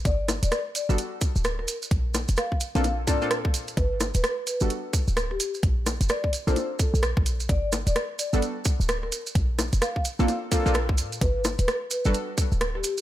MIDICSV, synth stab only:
0, 0, Header, 1, 2, 480
1, 0, Start_track
1, 0, Tempo, 465116
1, 53, Time_signature, 4, 2, 24, 8
1, 13426, End_track
2, 0, Start_track
2, 0, Title_t, "Synth stab"
2, 0, Program_c, 0, 62
2, 920, Note_on_c, 0, 55, 86
2, 920, Note_on_c, 0, 59, 80
2, 920, Note_on_c, 0, 62, 83
2, 920, Note_on_c, 0, 66, 84
2, 920, Note_on_c, 0, 69, 99
2, 977, Note_off_c, 0, 55, 0
2, 977, Note_off_c, 0, 59, 0
2, 977, Note_off_c, 0, 62, 0
2, 977, Note_off_c, 0, 66, 0
2, 977, Note_off_c, 0, 69, 0
2, 2840, Note_on_c, 0, 58, 89
2, 2840, Note_on_c, 0, 60, 82
2, 2840, Note_on_c, 0, 62, 83
2, 2840, Note_on_c, 0, 65, 82
2, 2841, Note_on_c, 0, 69, 102
2, 2897, Note_off_c, 0, 58, 0
2, 2897, Note_off_c, 0, 60, 0
2, 2897, Note_off_c, 0, 62, 0
2, 2897, Note_off_c, 0, 65, 0
2, 2898, Note_off_c, 0, 69, 0
2, 3172, Note_on_c, 0, 58, 98
2, 3172, Note_on_c, 0, 62, 90
2, 3172, Note_on_c, 0, 65, 87
2, 3172, Note_on_c, 0, 69, 110
2, 3173, Note_on_c, 0, 60, 90
2, 3297, Note_off_c, 0, 65, 0
2, 3298, Note_off_c, 0, 58, 0
2, 3298, Note_off_c, 0, 60, 0
2, 3298, Note_off_c, 0, 62, 0
2, 3298, Note_off_c, 0, 69, 0
2, 3319, Note_on_c, 0, 60, 90
2, 3320, Note_on_c, 0, 58, 96
2, 3320, Note_on_c, 0, 62, 90
2, 3320, Note_on_c, 0, 65, 90
2, 3320, Note_on_c, 0, 69, 110
2, 3411, Note_off_c, 0, 58, 0
2, 3411, Note_off_c, 0, 60, 0
2, 3411, Note_off_c, 0, 65, 0
2, 3412, Note_off_c, 0, 62, 0
2, 3412, Note_off_c, 0, 69, 0
2, 4759, Note_on_c, 0, 55, 88
2, 4759, Note_on_c, 0, 59, 85
2, 4759, Note_on_c, 0, 66, 82
2, 4760, Note_on_c, 0, 62, 83
2, 4760, Note_on_c, 0, 69, 98
2, 4817, Note_off_c, 0, 55, 0
2, 4817, Note_off_c, 0, 59, 0
2, 4817, Note_off_c, 0, 62, 0
2, 4817, Note_off_c, 0, 66, 0
2, 4817, Note_off_c, 0, 69, 0
2, 6678, Note_on_c, 0, 58, 89
2, 6678, Note_on_c, 0, 62, 84
2, 6678, Note_on_c, 0, 65, 84
2, 6679, Note_on_c, 0, 60, 82
2, 6679, Note_on_c, 0, 69, 100
2, 6736, Note_off_c, 0, 58, 0
2, 6736, Note_off_c, 0, 60, 0
2, 6736, Note_off_c, 0, 62, 0
2, 6736, Note_off_c, 0, 65, 0
2, 6736, Note_off_c, 0, 69, 0
2, 8599, Note_on_c, 0, 55, 90
2, 8599, Note_on_c, 0, 59, 81
2, 8599, Note_on_c, 0, 62, 84
2, 8599, Note_on_c, 0, 66, 82
2, 8599, Note_on_c, 0, 69, 98
2, 8657, Note_off_c, 0, 55, 0
2, 8657, Note_off_c, 0, 59, 0
2, 8657, Note_off_c, 0, 62, 0
2, 8657, Note_off_c, 0, 66, 0
2, 8657, Note_off_c, 0, 69, 0
2, 10519, Note_on_c, 0, 60, 80
2, 10519, Note_on_c, 0, 65, 81
2, 10519, Note_on_c, 0, 69, 98
2, 10520, Note_on_c, 0, 58, 90
2, 10520, Note_on_c, 0, 62, 83
2, 10577, Note_off_c, 0, 58, 0
2, 10577, Note_off_c, 0, 60, 0
2, 10577, Note_off_c, 0, 62, 0
2, 10577, Note_off_c, 0, 65, 0
2, 10577, Note_off_c, 0, 69, 0
2, 10852, Note_on_c, 0, 58, 98
2, 10852, Note_on_c, 0, 60, 89
2, 10852, Note_on_c, 0, 62, 90
2, 10852, Note_on_c, 0, 65, 91
2, 10852, Note_on_c, 0, 69, 109
2, 10977, Note_off_c, 0, 58, 0
2, 10977, Note_off_c, 0, 60, 0
2, 10977, Note_off_c, 0, 62, 0
2, 10977, Note_off_c, 0, 65, 0
2, 10977, Note_off_c, 0, 69, 0
2, 10998, Note_on_c, 0, 60, 88
2, 10999, Note_on_c, 0, 58, 97
2, 10999, Note_on_c, 0, 62, 88
2, 10999, Note_on_c, 0, 65, 91
2, 10999, Note_on_c, 0, 69, 110
2, 11091, Note_off_c, 0, 58, 0
2, 11091, Note_off_c, 0, 60, 0
2, 11091, Note_off_c, 0, 62, 0
2, 11091, Note_off_c, 0, 65, 0
2, 11091, Note_off_c, 0, 69, 0
2, 12439, Note_on_c, 0, 62, 81
2, 12440, Note_on_c, 0, 55, 89
2, 12440, Note_on_c, 0, 59, 85
2, 12440, Note_on_c, 0, 66, 81
2, 12440, Note_on_c, 0, 69, 98
2, 12497, Note_off_c, 0, 55, 0
2, 12497, Note_off_c, 0, 59, 0
2, 12497, Note_off_c, 0, 62, 0
2, 12497, Note_off_c, 0, 66, 0
2, 12497, Note_off_c, 0, 69, 0
2, 13426, End_track
0, 0, End_of_file